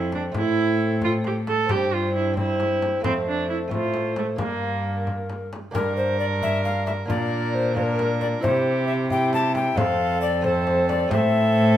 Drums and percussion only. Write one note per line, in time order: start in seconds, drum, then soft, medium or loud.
0.12 frame drum soft
0.34 frame drum medium
1.02 frame drum medium
1.24 frame drum soft
1.47 frame drum soft
1.69 frame drum medium
2.37 frame drum soft
2.60 frame drum soft
2.82 frame drum soft
3.04 frame drum medium
3.71 frame drum medium
3.94 frame drum soft
4.16 frame drum medium
4.38 frame drum medium
5.07 frame drum soft
5.30 frame drum soft
5.53 frame drum soft
5.75 frame drum medium
6.43 frame drum medium
6.65 frame drum soft
6.87 frame drum medium
7.10 frame drum medium
7.77 frame drum soft
7.99 frame drum medium
8.21 frame drum soft
8.44 frame drum medium
9.10 frame drum medium
9.33 frame drum medium
9.55 frame drum medium
9.78 frame drum medium
10.44 frame drum soft
10.67 frame drum soft
10.89 frame drum medium
11.11 frame drum medium